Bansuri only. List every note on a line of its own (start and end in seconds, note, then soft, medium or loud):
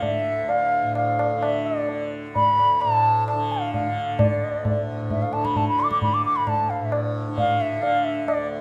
0.04 0.51 E5 loud
0.49 0.96 F5 loud
0.96 1.45 F5 loud
1.43 1.67 E5 loud
1.66 2.12 D5 medium
2.35 2.82 B5 loud
2.81 3.27 A5 loud
3.27 3.54 A5 medium
3.52 3.73 F5 medium
3.74 4.21 F5 medium
4.20 4.88 D5 medium
5.11 5.24 E5 medium
5.22 5.34 F5 medium
5.33 5.46 A5 medium
5.45 5.58 B5 medium
5.57 5.68 A5 loud
5.68 5.82 B5 loud
5.80 5.90 D6 loud
5.91 6.01 D6 loud
6.02 6.15 B5 loud
6.14 6.25 D6 loud
6.25 6.38 D6 medium
6.36 6.50 B5 loud
6.48 6.71 A5 loud
6.70 6.83 F5 medium
6.82 6.94 E5 medium
6.92 7.03 D5 medium
7.39 7.62 F5 loud
7.61 7.83 E5 loud
7.82 8.06 F5 loud
8.04 8.26 E5 loud
8.27 8.48 D5 medium